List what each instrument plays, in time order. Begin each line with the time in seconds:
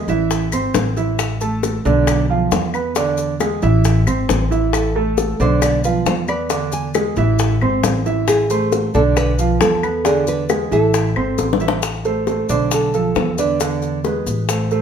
Already playing: nylon-string guitar E5
0.08 upright bass A1, grand piano E3 E4 E5, nylon-string guitar D5, maracas
0.31 high bongo, maracas
0.52 upright bass G#1, grand piano C4 C5 C6, high bongo, claves, maracas
0.74 upright bass A1, high bongo, low bongo, maracas
0.97 grand piano E3 E4 E5, high bongo, maracas
1.19 high bongo, claves, maracas
1.41 grand piano A3 A4 A5, maracas
1.63 high bongo, maracas
1.85 upright bass B1, grand piano D3 D4 D5, maracas
2.07 high bongo, claves, maracas
2.29 grand piano F3 F4 F5
2.51 upright bass E2, high bongo, low bongo, maracas
2.74 grand piano B3 B4 B5, claves, maracas
2.95 grand piano D3 D4 D5, high bongo, maracas
3.18 high bongo, maracas
3.40 grand piano G#3 G#4 G#5, high bongo, claves, maracas
3.62 upright bass A1, grand piano E3 E4 E5, maracas
3.85 high bongo, maracas
4.07 upright bass G#1, grand piano C4 C5 C6, high bongo, claves, maracas
4.29 upright bass A1, high bongo, low bongo, maracas
4.51 grand piano E3 E4 E5, high bongo, maracas
4.73 nylon-string guitar A4, high bongo, claves, maracas
4.96 grand piano A3 A4 A5
5.18 high bongo, maracas
5.40 upright bass B1, grand piano D3 D4 D5, nylon-string guitar C5, maracas
5.62 nylon-string guitar D5, high bongo, claves, maracas
5.84 grand piano F3 F4 F5, nylon-string guitar B4, maracas
6.06 upright bass E2, nylon-string guitar C5, high bongo, low bongo, maracas
6.28 grand piano B3 B4 B5, nylon-string guitar D5, claves, maracas
6.50 grand piano D3 D4 D5, high bongo, maracas
6.72 nylon-string guitar G#5, high bongo, maracas
6.94 grand piano G#3 G#4 G#5, high bongo, claves, maracas
7.16 upright bass A1, grand piano E3 E4 E5, maracas
7.39 high bongo, maracas
7.61 upright bass G#1, grand piano C4 C5 C6, high bongo, claves
7.83 upright bass A1, high bongo, low bongo, maracas
8.06 grand piano E3 E4 E5, high bongo, maracas
8.28 nylon-string guitar G#4, high bongo, claves, maracas
8.50 grand piano A3 C5 C6, maracas
8.72 high bongo, maracas
8.94 upright bass B1, grand piano D3 D4 D5, nylon-string guitar A4, maracas
9.17 nylon-string guitar B4, high bongo, claves, maracas
9.39 grand piano F3 F4 F5, maracas
9.61 upright bass E2, nylon-string guitar A4, high bongo, low bongo, maracas
9.83 grand piano B3 B4 B5, claves, maracas
10.05 grand piano D3 D4 D5, nylon-string guitar G#4, high bongo, maracas
10.27 nylon-string guitar B4, high bongo, maracas
10.49 grand piano G#3 G#4 G#5, high bongo, claves, maracas
10.71 upright bass A1, grand piano E3 E4 E5, nylon-string guitar A4, maracas
10.94 high bongo, maracas
11.16 upright bass G#1, grand piano C4 C5 C6, high bongo, claves
11.38 upright bass A1, high bongo, maracas
11.53 low bongo
11.60 grand piano E3 E4 E5, maracas
11.68 low bongo
11.82 high bongo, maracas
12.05 grand piano A3 A4 C5, high bongo, maracas
12.27 grand piano A3 A4 C5, high bongo, maracas
12.49 upright bass B1, grand piano D3 D4 D5, nylon-string guitar C5, high bongo, maracas
12.71 nylon-string guitar A4, high bongo, maracas
12.94 grand piano F3 F4 A4, maracas
13.15 upright bass E2, high bongo, low bongo, maracas
13.38 grand piano D3 D4 D5, nylon-string guitar B4, high bongo, maracas
13.60 grand piano D3 D4 D5, high bongo, maracas
13.82 high bongo, maracas
14.04 grand piano G#3 G#4 B4, high bongo, maracas
14.27 upright bass A1, high bongo, maracas
14.49 grand piano A3 A4 C5, high bongo, maracas
14.71 grand piano A3 A4 C5, maracas